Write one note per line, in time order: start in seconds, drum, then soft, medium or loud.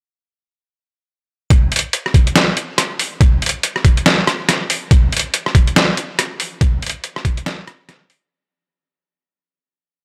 1.50 kick loud
1.50 closed hi-hat medium
1.72 closed hi-hat medium
1.76 closed hi-hat medium
1.79 closed hi-hat medium
1.93 closed hi-hat medium
2.06 cross-stick soft
2.14 kick medium
2.14 closed hi-hat medium
2.27 closed hi-hat soft
2.36 snare loud
2.36 closed hi-hat medium
2.57 closed hi-hat medium
2.78 cross-stick medium
2.78 closed hi-hat medium
2.99 open hi-hat loud
3.21 kick loud
3.21 closed hi-hat medium
3.42 closed hi-hat medium
3.46 closed hi-hat medium
3.49 closed hi-hat medium
3.63 closed hi-hat medium
3.76 cross-stick medium
3.85 kick medium
3.85 closed hi-hat medium
3.97 closed hi-hat soft
4.06 snare loud
4.06 closed hi-hat medium
4.27 cross-stick medium
4.27 closed hi-hat medium
4.49 cross-stick medium
4.49 snare soft
4.49 closed hi-hat medium
4.70 open hi-hat loud
4.91 kick loud
4.91 closed hi-hat medium
5.12 closed hi-hat medium
5.17 closed hi-hat medium
5.19 closed hi-hat medium
5.34 closed hi-hat medium
5.46 cross-stick medium
5.55 kick medium
5.55 closed hi-hat medium
5.67 closed hi-hat soft
5.76 snare loud
5.76 closed hi-hat medium
5.97 closed hi-hat medium
6.19 cross-stick medium
6.19 closed hi-hat medium
6.40 open hi-hat medium
6.61 kick loud
6.61 closed hi-hat medium
6.82 closed hi-hat soft
6.86 closed hi-hat medium
6.89 closed hi-hat medium
7.04 closed hi-hat medium
7.16 cross-stick medium
7.25 kick medium
7.25 closed hi-hat medium
7.37 closed hi-hat soft
7.46 snare loud
7.46 closed hi-hat medium
7.67 cross-stick medium
7.67 closed hi-hat medium
7.89 cross-stick medium
7.89 snare soft
7.89 closed hi-hat medium
8.10 open hi-hat medium